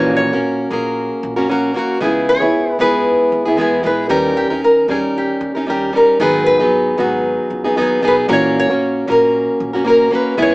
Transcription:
Already playing: A#1 A#2 E3 A#3 C#4 F#4 A#4 C#5
0.17 C#5
0.33 A#1 A#3 C#4 F#4 A#4
0.70 A#1 A#3 C#4 F#4 G#4 A#4
1.23 A#1
1.36 A#3 C#4 F#4 A#4
1.49 A#3 C#4 F#4 A#4
1.74 A#3 C#4 F#4 A#4
1.79 F#4
2.00 C#2 C#3 G#3 B3 E4 G#4
2.29 C#5
2.40 C#2 B3 E4 G#4
2.79 C#2 G#3 B3 E4 G#4 B4
3.32 D#2
3.46 B3 E4 G#4
3.57 E2 G#3 B3 E4 G#4
3.61 G#4
3.83 A#1 G#3 B3 E4 G#4 B4
4.09 D#2 D#3 G3 C#4 D#4 G4 A#4
4.37 G4
4.50 D#2 C#4 D#4 A#4
4.64 A#4
4.88 D#2 G3 C#4 D#4 G#4 A#4
5.18 G4
5.41 D#2
5.55 C#4 D#4 A#4
5.67 G3 C#4 D#4 G4 A#4
5.93 G3 C#4 D#4 A#4
5.97 A#4
6.19 G#1 G#2 D#3 F#3 B3 D#4 G#4 B4
6.46 B4
6.59 G#1 F#3 B3 D#4 G#4
6.98 G#1 F#3 B3 D#4 F#4 G#4
7.50 C#2
7.64 F#3 B3 D#4 G#4
7.76 D#2 F#3 B3 D#4 G#4
7.81 G#4
8.02 B1 F#3 B3 D#4 G#4
8.08 B4
8.28 A#1 A#2 E3 A#3 C#4 F#4 A#4
8.33 C#5
8.60 C#5
8.69 A#1 A#3 C#4 F#4 A#4
9.07 A#1 A#3 C#4 F#4 A#4
9.11 A#4
9.60 A#1
9.73 A#3 C#4 F#4 A#4
9.85 A#3 C#4 F#4 A#4
9.89 A#4
10.11 A#3 C#4 F#4 A#4
10.15 B4
10.37 C#2 C#3 G#3 B3 E4 G#4
10.42 C#5

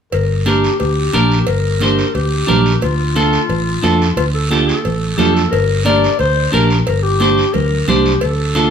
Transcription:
0.12 G1 A#4, cowbell, high conga, long guiro
0.46 D4 G4 A#4, cowbell, high conga, short guiro
0.64 short guiro
0.80 D2 G4, cowbell, high conga, long guiro
1.13 A#1 D4 G4 A#4, cowbell, high conga, short guiro
1.32 short guiro
1.47 G1 A#4, cowbell, high conga, long guiro
1.80 D4 G4 C5, cowbell, high conga, short guiro
1.99 short guiro
2.14 D2 G4, cowbell, high conga, long guiro
2.47 A#1 D4 G4 A#4, cowbell, high conga, low conga, low timbale, short guiro
2.66 short guiro
2.82 D2 F4, cowbell, high conga, long guiro
3.15 D4 F4 A4, cowbell, high conga, short guiro
3.33 short guiro
3.49 A1, cowbell, high conga, long guiro
3.83 F2 D4 F4 A4, cowbell, high conga, low timbale, short guiro
4.02 short guiro
4.17 D2 F4, cowbell, high conga, long guiro
4.34 A4
4.50 D4 F4 G4 A4, cowbell, high conga, short guiro
4.67 A4, short guiro
4.84 A1, cowbell, high conga, long guiro
5.17 F2 D4 F4 G4 A4, cowbell, high conga, low conga, low timbale, short guiro
5.35 A4, short guiro
5.51 G1 A#4, cowbell, high conga, long guiro
5.85 D4 G4 A#4 D5, cowbell, high conga, short guiro
6.04 short guiro
6.19 D2 C5, cowbell, high conga, long guiro
6.52 A#1 D4 G4 A#4, cowbell, high conga, short guiro
6.70 short guiro
6.87 G1 A#4, cowbell, high conga, long guiro
7.03 G4
7.20 D4 G4 C5, cowbell, high conga, short guiro
7.38 short guiro
7.53 D2 A#4, cowbell, high conga, low conga, long guiro
7.88 C2 D4 G4 C5, cowbell, high conga, low conga, short guiro
8.06 short guiro
8.21 D2 A4, cowbell, high conga, long guiro
8.55 D4 F4 A4, cowbell, high conga, short guiro

